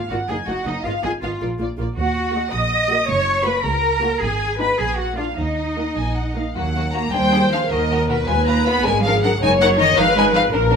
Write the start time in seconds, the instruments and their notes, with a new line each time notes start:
Already playing: violin section F5
0.10 double bass section G#1, viola section A#3 F4, cello section F#4, violin section D5 F#5
0.29 double bass section F#1, viola section A#3 D#4, cello section G#4, violin section D#5 G#5
0.47 double bass section F#1, viola section A#3 D#4, cello section F#4, violin section D#5 F#5
0.65 double bass section F#1, viola section A#3 D#4, cello section D#4, violin section D#5
0.84 double bass section G#1, viola section B3 F4, cello section F4, violin section D#5 F5
1.03 double bass section G#1, viola section B3 F4, cello section G#4, violin section D#5 G#5
1.22 double bass section G#1, viola section B3 F4, cello section F4, violin section D#5 F5
1.41 double bass section A#1, viola section A#3 F4, violin section D5
1.59 double bass section A#1, viola section A#3 F4, violin section D5
1.77 double bass section A#1, viola section A#3 F4, violin section D5
1.97 double bass section D#2, cello section F#4, violin section F#5
2.33 viola section A#3 F#4, violin section D#5
2.53 double bass section A#1, cello section D#5, violin section D#6
2.90 viola section A#3 F#4, violin section D#5
3.08 double bass section F#1, cello section C#5, violin section C#6
3.45 viola section A#3 F#4, cello section B4, violin section C#5 B5
3.64 double bass section C#2, cello section A#4, violin section A#5
4.02 viola section A#3 F#4, violin section C#5
4.21 double bass section G#1, cello section G#4, violin section G#5
4.59 viola section B3 D#4, cello section B4, violin section G#5 B5
4.79 double bass section A#1, cello section G#4, violin section G#5
4.98 cello section F#4, violin section F#5
5.17 viola section A#3 D4, cello section F4, violin section F5
5.37 double bass section D#2, cello section D#4, violin section D#5
5.77 viola section A#3 D#4, violin section F#5
5.97 double bass section A#1, violin section G#5
6.16 violin section F#5
6.36 viola section A#3 D#4, violin section F5
6.54 double bass section D#2, cello section F#3, violin section A#3 F#4 F#5
6.76 violin section A#3 F#4
6.93 violin section A#3 F#4 A#5, cello section A#3
7.12 double bass section D#2, cello section G3, violin section D4 G#4 G5, viola section C5
7.32 violin section D4 G#4
7.50 cello section F3, violin section D4 G#4 F5
7.70 double bass section D#2, cello section D#3, violin section F#4 A#4 D#5, viola section A#4
7.90 violin section F#4 A#4
8.09 cello section B2, violin section F#4 A#4 B4
8.27 double bass section D#2, cello section G#3, violin section F4 B4 G#5, viola section B4
8.45 cello section A#3, violin section F4 B4 A#5
8.65 cello section B3, violin section F4 B4 B5
8.84 double bass section G#1, cello section G#3, violin section D4 A#4 G#5, viola section G#4
9.02 cello section F3, violin section D4 A#4 F5
9.22 cello section F#3, violin section D4 A#4 F#5
9.41 double bass section F#1, cello section G#3, violin section D#4 A#4 G#5, viola section C#5
9.60 cello section F#3, violin section D#4 A#4 F#5
9.77 cello section D#3, violin section D#4 A#4 D#5
9.97 double bass section G#1, cello section F3, violin section D#4 B4 F5, viola section B4
10.17 cello section G#3, violin section D#4 B4 G#5
10.33 cello section F3, violin section D#4 B4 F5
10.52 double bass section A#1, violin section D4 A#4, viola section A#4
10.70 violin section D4 A#4